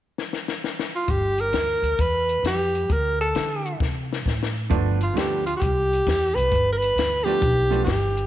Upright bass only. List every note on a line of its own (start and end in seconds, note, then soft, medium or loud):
1.08 1.50 G1 medium
1.53 1.81 D2 medium
1.82 1.97 D2 medium
1.99 2.41 E2 medium
2.43 2.85 F2 medium
2.90 3.31 D2 medium
3.35 3.77 D3 medium
3.80 4.22 C3 medium
4.25 4.72 A2 medium
4.71 5.08 G1 medium
5.14 5.52 D2 medium
5.61 5.99 C2 medium
6.07 6.31 E2 medium
6.35 6.48 C2 medium
6.51 6.89 G1 medium
6.96 7.33 D2 medium
7.41 7.79 B1 medium
7.87 8.24 G1 medium